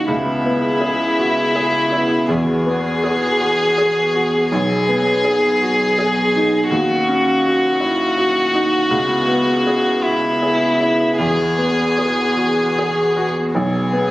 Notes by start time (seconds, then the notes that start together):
Already playing: C#4 D#4 E4 F#4
0.07 C#2 B3 E4 G#4
0.46 B3
0.81 G#4
1.19 F#4
1.56 G#4
1.92 E4
2.29 E2 F#4 G#4
2.66 B3
3.04 G#4
3.41 F#4
3.78 G#4
4.14 F#4
4.50 B1 B3 G#4 D#5
4.89 B3
5.24 G#4
5.61 F#4
5.99 G#4
6.36 D#4
6.69 D#2 C#4 F#4
7.08 C#4
7.45 F#4
7.80 E4
8.18 F#4
8.54 D#4
8.91 C#2 B3 E4 G#4
9.28 B3
9.67 G#4
10.04 E4 F#4
10.42 G#4
10.80 E4
11.18 E2 F#4 G#4
11.58 B3
11.98 G#4
12.37 F#4
12.79 G#4
13.17 F#4
13.53 B1 B3 G#4 D#5
13.93 B3